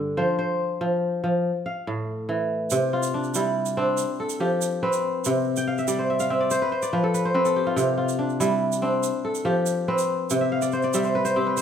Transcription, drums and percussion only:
2.70 shaker
3.03 shaker
3.24 shaker
3.34 shaker
3.66 shaker
3.97 shaker
4.29 shaker
4.61 shaker
4.93 shaker
5.24 shaker
5.56 shaker
5.78 shaker
5.88 shaker
6.19 shaker
6.51 shaker
6.82 shaker
7.14 shaker
7.45 shaker
7.77 shaker
8.09 shaker
8.29 shaker
8.41 shaker
8.72 shaker
9.03 shaker
9.35 shaker
9.66 shaker
9.98 shaker
10.30 shaker
10.62 shaker
10.72 shaker
10.82 shaker
10.93 shaker
11.04 shaker
11.25 shaker
11.57 shaker

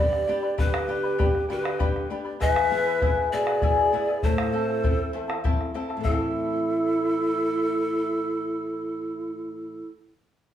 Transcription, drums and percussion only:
0.13 bombo rim
0.59 bombo rim, bombo low
0.74 bombo rim
1.20 bombo rim, bombo low
1.35 bombo rim
1.65 bombo rim
1.80 bombo rim, bombo low
1.96 bombo rim
2.42 bombo rim, bombo low
2.56 bombo rim
3.02 bombo rim, bombo low
3.17 bombo rim
3.47 bombo rim
3.62 bombo rim, bombo low
3.78 bombo rim
4.23 bombo low
4.38 bombo rim
4.84 bombo low
5.30 bombo rim
5.45 bombo rim, bombo low
5.61 bombo rim
5.75 bombo rim
5.90 bombo rim
6.05 bombo low

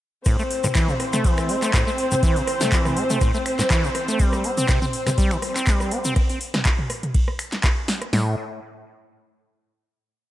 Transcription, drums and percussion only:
0.25 kick, cross-stick, closed hi-hat, ride, shaker
0.39 shaker
0.51 open hi-hat
0.64 cross-stick, closed hi-hat, mid tom, shaker
0.75 kick, clap, closed hi-hat, ride, shaker
0.89 mid tom, shaker
1.00 cross-stick, open hi-hat
1.13 finger snap, snare, closed hi-hat, mid tom, shaker
1.24 kick, closed hi-hat, ride, shaker
1.38 finger snap, cross-stick, shaker
1.49 open hi-hat
1.62 finger snap, clap, closed hi-hat, shaker
1.74 kick, cross-stick, clap, closed hi-hat, ride, shaker
1.88 shaker
1.98 open hi-hat
2.11 closed hi-hat, mid tom, shaker
2.23 kick, closed hi-hat, ride, shaker
2.36 open hi-hat, shaker
2.47 cross-stick, open hi-hat
2.61 snare, closed hi-hat, mid tom, shaker
2.72 kick, clap, closed hi-hat, ride, shaker
2.85 cross-stick, mid tom, shaker
2.97 open hi-hat
3.10 closed hi-hat, mid tom, shaker
3.21 kick, cross-stick, closed hi-hat, ride, shaker
3.34 shaker
3.46 finger snap, open hi-hat
3.59 cross-stick, snare, clap, closed hi-hat, shaker
3.70 kick, clap, closed hi-hat, ride, shaker
3.84 shaker
3.95 cross-stick, open hi-hat
4.08 closed hi-hat, shaker
4.19 kick, closed hi-hat, ride, shaker
4.33 cross-stick, shaker
4.44 open hi-hat
4.57 closed hi-hat, mid tom, shaker
4.68 kick, cross-stick, clap, closed hi-hat, ride, shaker
4.82 mid tom, shaker
4.93 open hi-hat
5.07 finger snap, cross-stick, snare, closed hi-hat, mid tom, shaker
5.18 kick, closed hi-hat, ride, shaker
5.31 finger snap, shaker
5.42 cross-stick, open hi-hat
5.56 finger snap, clap, closed hi-hat, shaker
5.67 kick, clap, closed hi-hat, ride, shaker
5.80 cross-stick, shaker
5.91 open hi-hat
6.05 closed hi-hat, mid tom, shaker
6.16 kick, cross-stick, closed hi-hat, ride
6.29 open hi-hat
6.41 open hi-hat
6.54 cross-stick, snare, closed hi-hat, mid tom
6.65 kick, clap, closed hi-hat, ride
6.79 mid tom
6.90 cross-stick, open hi-hat
7.03 closed hi-hat, mid tom
7.14 kick, closed hi-hat, ride
7.28 cross-stick
7.39 finger snap, open hi-hat
7.52 snare, clap, closed hi-hat
7.64 kick, cross-stick, clap, closed hi-hat, ride
7.88 snare, open hi-hat
8.02 cross-stick, closed hi-hat
8.13 snare, open hi-hat

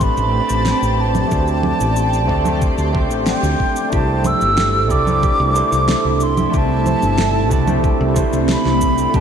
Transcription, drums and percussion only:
0.01 kick, cabasa
0.17 cabasa
0.50 cabasa
0.66 snare, cabasa
0.83 cabasa
1.15 low conga, cabasa
1.31 kick, cabasa
1.48 cabasa
1.63 low conga
1.81 cabasa
1.96 cabasa
2.13 cabasa
2.29 kick
2.46 low conga, cabasa
2.62 kick, cabasa
2.78 cabasa
2.95 kick
3.11 cabasa
3.27 snare, cabasa
3.44 cabasa
3.60 kick
3.76 cabasa
3.92 kick, cabasa
4.24 low conga, cabasa
4.41 cabasa
4.58 snare, cabasa
4.91 kick, cabasa
5.07 low conga, cabasa
5.23 kick, cabasa
5.56 cabasa
5.72 cabasa
5.88 snare, cabasa
6.20 cabasa
6.37 low conga, cabasa
6.54 kick, cabasa
6.86 low conga, cabasa
7.02 cabasa
7.18 snare, cabasa
7.51 kick, cabasa
7.68 low conga, cabasa
7.84 kick, cabasa
8.16 kick, cabasa
8.33 cabasa
8.49 snare, cabasa
8.65 snare
8.81 kick, cabasa
8.98 cabasa
9.14 kick, cabasa

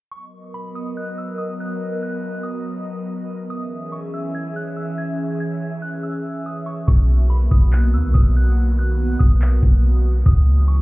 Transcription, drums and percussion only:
6.88 kick
7.51 kick
7.73 clap
8.15 kick
9.20 kick
9.42 clap
9.63 kick
10.26 kick

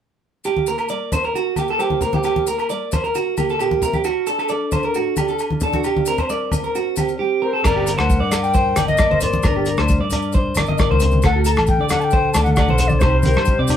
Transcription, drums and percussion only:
0.44 low agogo, maracas
0.56 high conga
0.67 maracas
0.78 low agogo, maracas
0.88 maracas
1.12 high conga, low conga, low agogo, maracas
1.24 maracas
1.36 maracas
1.56 high conga, low agogo, maracas
1.68 maracas
1.79 low agogo, maracas
1.90 high conga
2.01 low conga, maracas
2.13 high conga, maracas
2.23 low agogo, maracas
2.36 high conga
2.47 maracas
2.59 low agogo, maracas
2.69 maracas
2.92 high conga, low conga, low agogo, maracas
3.04 maracas
3.15 maracas
3.37 high conga, low agogo, maracas
3.49 maracas
3.59 low agogo, maracas
3.71 high conga
3.82 low conga, maracas
3.93 high conga, maracas
4.04 low agogo, maracas
4.27 maracas
4.39 low agogo, maracas
4.49 maracas
4.71 high conga, low conga, low agogo, maracas
4.83 maracas
4.94 maracas
5.16 high conga, low agogo, maracas
5.28 maracas
5.39 low agogo, maracas
5.51 high conga
5.60 low conga, maracas
5.73 high conga, maracas
5.84 low agogo, maracas
5.96 high conga
6.06 maracas
6.18 low conga, low agogo, maracas
6.30 maracas
6.51 high conga, low conga, low agogo, maracas
6.64 maracas
6.75 maracas
6.96 high conga, low agogo, maracas
7.08 maracas
7.64 kick, cross-stick, crash, low conga, low agogo, maracas
7.87 closed hi-hat, maracas
7.98 cross-stick, low agogo, maracas
8.10 kick, maracas
8.32 cross-stick, closed hi-hat, low agogo, maracas
8.44 maracas
8.54 kick, maracas
8.76 cross-stick, closed hi-hat, high conga, low agogo, maracas
8.88 high conga, maracas
8.97 kick, cross-stick, low agogo, maracas
9.11 high conga
9.21 closed hi-hat, low conga, maracas
9.33 high conga, maracas
9.43 kick, cross-stick, low conga, low agogo, maracas
9.65 closed hi-hat, maracas
9.77 cross-stick, low agogo, maracas
9.88 kick, maracas
10.10 closed hi-hat, low conga, low agogo, maracas
10.22 maracas
10.32 kick, maracas
10.55 cross-stick, closed hi-hat, high conga, low agogo, maracas
10.66 high conga, maracas
10.78 kick, cross-stick, low agogo, maracas
10.92 high conga
11.00 closed hi-hat, low conga, maracas
11.11 high conga, maracas
11.22 kick, cross-stick, low conga, low agogo, maracas
11.45 closed hi-hat, maracas
11.56 cross-stick, low agogo, maracas
11.67 kick, maracas
11.89 cross-stick, closed hi-hat, low conga, low agogo, maracas
12.01 maracas
12.11 kick, maracas
12.34 cross-stick, closed hi-hat, high conga, low agogo, maracas
12.46 high conga, maracas
12.56 kick, cross-stick, low agogo, maracas
12.69 high conga
12.78 closed hi-hat, low conga, maracas
12.89 high conga, maracas
13.00 kick, cross-stick, low conga, low agogo, maracas
13.23 closed hi-hat, high conga, low conga, maracas
13.34 cross-stick, low agogo, maracas
13.45 kick, maracas
13.67 closed hi-hat, low conga, low agogo, maracas

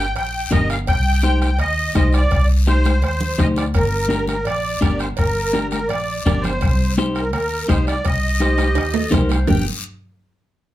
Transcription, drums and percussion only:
0.16 bombo rim, cowbell, long guiro
0.52 bombo low, bombo rim, high conga, low conga, low timbale, short guiro
0.70 bombo rim, short guiro
0.87 bombo low, bombo rim, cowbell, long guiro
1.23 bombo rim, high conga, short guiro
1.42 bombo rim, high conga, short guiro
1.59 bombo rim, cowbell, long guiro
1.94 bombo low, bombo rim, high conga, low timbale, short guiro
2.13 bombo rim, short guiro
2.31 bombo low, bombo rim, cowbell, long guiro
2.66 bombo rim, high conga, short guiro
2.84 bombo rim, high conga, short guiro
3.02 bombo rim, cowbell, long guiro
3.21 low conga
3.38 bombo low, bombo rim, low conga, short guiro
3.56 bombo rim, low conga, short guiro
3.74 bombo low, bombo rim, cowbell, long guiro
4.10 bombo rim, high conga, short guiro
4.27 bombo rim, high conga, short guiro
4.45 bombo rim, cowbell, long guiro
4.81 bombo low, bombo rim, high conga, short guiro
4.99 bombo rim, short guiro
5.17 bombo low, bombo rim, cowbell, long guiro
5.53 bombo rim, high conga, short guiro
5.71 bombo rim, high conga, short guiro
5.89 bombo rim, cowbell, long guiro
6.25 bombo low, bombo rim, high conga, low conga, short guiro
6.44 bombo rim, low conga, short guiro
6.61 bombo low, bombo rim, cowbell, long guiro
6.97 bombo rim, high conga, short guiro
7.15 bombo rim, short guiro
7.33 bombo rim, cowbell, long guiro
7.69 bombo low, bombo rim, high conga, short guiro
7.87 bombo rim, short guiro
8.05 bombo low, bombo rim, cowbell, long guiro
8.41 bombo rim, high conga, short guiro
8.58 bombo rim, high conga, high timbale, short guiro
8.75 bombo rim, cowbell, high timbale, long guiro
8.94 low timbale
9.12 bombo low, bombo rim, high conga, low conga, low timbale, short guiro
9.29 bombo rim, low timbale, short guiro
9.47 bombo low, low conga, low timbale, long guiro

